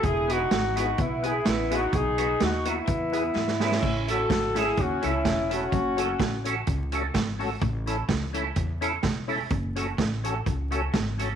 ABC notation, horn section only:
X:1
M:4/4
L:1/8
Q:"Swing" 1/4=127
K:Alyd
V:1 name="Horn section"
[EG] [DF]2 [DF] [B,E] [EG] [B,E] [DF] | [DG]2 [DF] [B,E]4 [CE]- | [CE] [FA]2 [EG] [CF] [CE]2 [CF]- | [CF]3 z4 z |
z8 | z8 |]